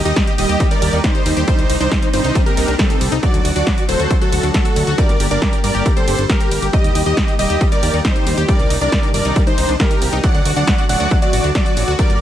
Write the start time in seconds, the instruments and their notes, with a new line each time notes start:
Already playing: analog synth pad D#3 G3 A#3 G4
0.05 analog synth bass D#2, synth pluck D#4, supersaw synth G4 D#5, digital synth lead D#5, closed hi-hat
0.16 synth pluck G3, kick, snare, closed hi-hat, ride
0.27 synth pluck G4, closed hi-hat
0.38 analog synth bass D#1, synth pluck G3, supersaw synth G4 D#5, digital synth lead D#5, open hi-hat, ride
0.49 analog synth bass D#2, synth pluck G4, closed hi-hat
0.60 synth pluck G3, kick, closed hi-hat, ride
0.71 synth pluck G3, supersaw synth A#4 D5, digital synth lead D5, closed hi-hat
0.82 analog synth bass D#2, synth pluck G4, open hi-hat, ride
0.93 analog synth bass D#2, synth pluck D#4, closed hi-hat
1.04 synth pluck G3, supersaw synth D#4 C5, digital synth lead C5, kick, snare, closed hi-hat, ride
1.15 synth pluck G4, closed hi-hat
1.26 analog synth bass D#2, synth pluck G3, open hi-hat, ride
1.37 analog synth bass D#2, synth pluck G4, closed hi-hat
1.48 synth pluck G3, analog synth pad C4 D4 D#4, supersaw synth D#4 C5, digital synth lead C5, kick, closed hi-hat, ride
1.59 analog synth bass C2, synth pluck G3, closed hi-hat
1.69 analog synth bass C2, synth pluck D#4, open hi-hat, ride
1.80 analog synth bass C2, synth pluck D4, supersaw synth D#4 C5, digital synth lead C5, closed hi-hat
1.91 synth pluck G3, kick, snare, closed hi-hat, ride
2.02 synth pluck D#4, closed hi-hat
2.13 analog synth bass G1, synth pluck G3, supersaw synth D#4 C5, digital synth lead C5, open hi-hat, ride
2.24 analog synth bass C2, synth pluck D#4, closed hi-hat
2.35 synth pluck G3, kick, closed hi-hat, ride
2.46 synth pluck G3, supersaw synth G4 A#4, digital synth lead A#4, closed hi-hat
2.57 analog synth bass C2, synth pluck D#4, open hi-hat, ride
2.68 analog synth bass C2, synth pluck D4, closed hi-hat
2.79 synth pluck G3, supersaw synth C4 A4, digital synth lead A4, kick, snare, closed hi-hat, ride
2.90 synth pluck D#4, closed hi-hat
3.01 analog synth bass C2, synth pluck G3, open hi-hat, ride
3.12 analog synth bass C2, synth pluck D#4, closed hi-hat
3.23 analog synth pad D3 F#3 A3 F#4, synth pluck F#3, supersaw synth F#4 D5, digital synth lead D5, kick, closed hi-hat, ride
3.34 analog synth bass D2, synth pluck F#3, closed hi-hat
3.45 analog synth bass D2, synth pluck F#4, open hi-hat, ride
3.56 analog synth bass D2, synth pluck D4, supersaw synth F#4 D5, digital synth lead D5, closed hi-hat
3.67 synth pluck F#3, kick, snare, closed hi-hat, ride
3.77 synth pluck F#4, closed hi-hat
3.88 analog synth bass D1, synth pluck F#3, supersaw synth A4 C5, digital synth lead C5, open hi-hat, ride
3.99 analog synth bass D2, synth pluck F#4, closed hi-hat
4.10 synth pluck F#3, kick, closed hi-hat, ride
4.21 synth pluck F#3, supersaw synth F#4 A4, digital synth lead A4, closed hi-hat
4.32 analog synth bass D2, synth pluck F#4, open hi-hat, ride
4.43 analog synth bass D2, synth pluck D4, closed hi-hat
4.54 synth pluck F#3, supersaw synth F#4 A4, digital synth lead A4, kick, snare, closed hi-hat, ride
4.65 synth pluck F#4, closed hi-hat
4.76 analog synth bass D2, synth pluck F#3, open hi-hat, ride
4.87 analog synth bass D2, synth pluck F#4, closed hi-hat
4.98 synth pluck G3, analog synth pad G3 A#3 G4, supersaw synth A#4 D5, digital synth lead D5, kick, closed hi-hat, ride
5.09 analog synth bass G1, synth pluck G3, closed hi-hat
5.20 analog synth bass G1, synth pluck G4, open hi-hat, ride
5.31 analog synth bass G1, synth pluck D4, supersaw synth A#4 D5, digital synth lead D5, closed hi-hat
5.42 synth pluck G3, kick, snare, closed hi-hat, ride
5.53 synth pluck G4, closed hi-hat
5.64 analog synth bass G2, synth pluck G3, supersaw synth A#4 D5, digital synth lead D5, open hi-hat, ride
5.75 analog synth bass G1, synth pluck G4, closed hi-hat
5.86 synth pluck G3, kick, closed hi-hat, ride
5.96 synth pluck G3, supersaw synth A4 C5, digital synth lead C5, closed hi-hat
6.07 analog synth bass G1, synth pluck G4, open hi-hat, ride
6.18 analog synth bass G1, synth pluck D4, closed hi-hat
6.29 synth pluck G3, supersaw synth G4 A#4, digital synth lead A#4, kick, snare, closed hi-hat, ride
6.40 synth pluck G4, closed hi-hat
6.51 analog synth bass G1, synth pluck G3, open hi-hat, ride
6.62 analog synth bass G1, synth pluck G4, closed hi-hat
6.73 analog synth pad D#3, synth pluck G3, supersaw synth G4 D#5, digital synth lead D#5, kick, closed hi-hat, ride
6.84 analog synth bass D#2, synth pluck G3, closed hi-hat
6.95 analog synth bass D#2, synth pluck G4, open hi-hat, ride
7.06 analog synth bass D#2, synth pluck D#4, supersaw synth G4 D#5, digital synth lead D#5, closed hi-hat
7.17 synth pluck G3, kick, snare, closed hi-hat, ride
7.28 synth pluck G4, closed hi-hat
7.39 analog synth bass D#1, synth pluck G3, supersaw synth G4 D#5, digital synth lead D#5, open hi-hat, ride
7.50 analog synth bass D#2, synth pluck G4, closed hi-hat
7.61 synth pluck G3, kick, closed hi-hat, ride
7.72 synth pluck G3, supersaw synth A#4 D5, digital synth lead D5, closed hi-hat
7.83 analog synth bass D#2, synth pluck G4, open hi-hat, ride
7.94 analog synth bass D#2, synth pluck D#4, closed hi-hat
8.05 synth pluck G3, supersaw synth D#4 C5, digital synth lead C5, kick, snare, closed hi-hat, ride
8.16 synth pluck G4, closed hi-hat
8.26 analog synth bass D#2, synth pluck G3, open hi-hat, ride
8.37 analog synth bass D#2, synth pluck G4, closed hi-hat
8.48 analog synth pad C3 D4, synth pluck G3, supersaw synth A#4 D5, digital synth lead D5, kick, closed hi-hat, ride
8.59 analog synth bass C2, synth pluck G3, closed hi-hat
8.70 analog synth bass C2, synth pluck D#4, open hi-hat, ride
8.81 analog synth bass C2, synth pluck D4, supersaw synth A#4 D5, digital synth lead D5, closed hi-hat
8.92 synth pluck G3, kick, snare, closed hi-hat, ride
9.03 synth pluck D#4, closed hi-hat
9.14 analog synth bass G1, synth pluck G3, supersaw synth A#4 D5, digital synth lead D5, open hi-hat, ride
9.25 analog synth bass C2, synth pluck D#4, closed hi-hat
9.36 synth pluck G3, kick, closed hi-hat, ride
9.47 synth pluck G3, supersaw synth D#4 C5, digital synth lead C5, closed hi-hat
9.58 analog synth bass C2, synth pluck D#4, open hi-hat, ride
9.69 analog synth bass C2, synth pluck D4, closed hi-hat
9.80 synth pluck G3, supersaw synth G4 A#4, digital synth lead A#4, kick, snare, closed hi-hat, ride
9.91 synth pluck D#4, closed hi-hat
10.02 analog synth bass C2, synth pluck G3, open hi-hat, ride
10.13 analog synth bass C2, synth pluck D#4, closed hi-hat
10.24 analog synth pad D3 F#3 A3 F#4, synth pluck F#3, supersaw synth D5 F#5, digital synth lead F#5, kick, closed hi-hat, ride
10.35 analog synth bass D2, synth pluck F#3, closed hi-hat
10.45 analog synth bass D2, synth pluck F#4, open hi-hat, ride
10.56 analog synth bass D2, synth pluck D4, supersaw synth D5 F#5, digital synth lead F#5, closed hi-hat
10.67 synth pluck F#3, kick, snare, closed hi-hat, ride
10.78 synth pluck F#4, closed hi-hat
10.89 analog synth bass D1, synth pluck F#3, supersaw synth D5 F#5, digital synth lead F#5, open hi-hat, ride
11.00 analog synth bass D2, synth pluck F#4, closed hi-hat
11.11 synth pluck F#3, kick, closed hi-hat, ride
11.22 synth pluck F#3, supersaw synth F#4 D5, digital synth lead D5, closed hi-hat
11.33 analog synth bass A1, synth pluck F#4, open hi-hat, ride
11.44 analog synth bass D2, synth pluck D4, closed hi-hat
11.55 synth pluck F#3, supersaw synth F#4 D5, digital synth lead D5, kick, snare, closed hi-hat, ride
11.66 synth pluck F#4, closed hi-hat
11.77 analog synth bass A1, synth pluck F#3, open hi-hat, ride
11.88 analog synth bass D2, synth pluck F#4, closed hi-hat
11.99 synth pluck G3, analog synth pad G3 A#3 G4, supersaw synth A#4 D5, digital synth lead D5, kick, closed hi-hat, ride
12.10 analog synth bass G1, synth pluck G3, closed hi-hat